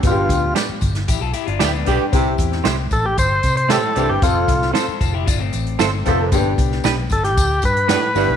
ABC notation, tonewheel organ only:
X:1
M:4/4
L:1/16
Q:1/4=115
K:Gmix
V:1 name="Tonewheel organ"
F4 z12 | z6 A G c3 c A3 G | F4 z12 | z6 A G3 B6 |]